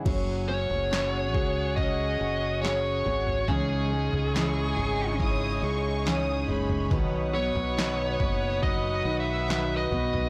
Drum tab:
CC |x---------------|----------------|----------------|
SD |----o-------o---|----o-------o---|----o-------o---|
FT |o--o--o-o-----oo|o--o--o-o-----oo|o--o--o-o-----oo|
BD |o-----o-o-------|--------o-------|o-----o-o-------|